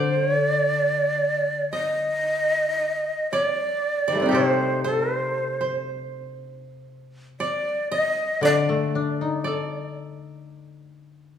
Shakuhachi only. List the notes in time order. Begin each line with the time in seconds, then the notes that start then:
Already playing: C5
0.19 C#5
0.40 D5
1.71 D#5
3.31 C#5
3.44 D5
4.33 C5
4.85 A4
5.16 C5
7.40 D5
7.93 D#5
8.45 D5